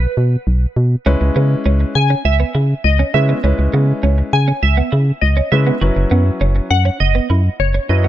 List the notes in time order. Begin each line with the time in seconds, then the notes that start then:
Already playing: B4
0.17 B2
0.47 B1
0.76 B2
1.06 C#2 G#3 C#4 E4 B4
1.21 C#2, muted clean electric guitar stroke
1.36 C#3 B3
1.66 C#2 C#4
1.80 muted clean electric guitar stroke
1.95 C#3 G#5
2.10 C#4
2.25 C#2 E5, muted clean electric guitar stroke
2.40 B3
2.55 C#3 E4
2.84 C#2 D#5
2.99 C#4
3.14 C#3 G#3 C#4 E4 B4 E5, muted clean electric guitar stroke
3.29 B3
3.44 C#2 G#3 C#4 E4 B4
3.59 C#2, muted clean electric guitar stroke
3.74 C#3 B3
4.03 C#2 C#4
4.18 muted clean electric guitar stroke
4.33 C#3 G#5
4.48 C#4
4.63 C#2 E5, muted clean electric guitar stroke
4.77 B3
4.92 C#3 E4
5.21 C#2 D#5
5.37 C#4
5.52 C#3 G#3 C#4 E4 B4 E5, muted clean electric guitar stroke
5.67 B3
5.81 F#1 F#3 C#4 E4 F#4 B4
5.96 F#1, muted clean electric guitar stroke
6.11 F#2 B3
6.41 F#1 C#4
6.56 muted clean electric guitar stroke
6.71 F#2 F#5
6.85 C#4
7.00 F#1 D#5, muted clean electric guitar stroke
7.15 B3
7.30 F#2 E4
7.60 F#1 C#5
7.74 C#4
7.89 F#2 F#3 C#4 E4 B4 D#5, muted clean electric guitar stroke
8.04 B3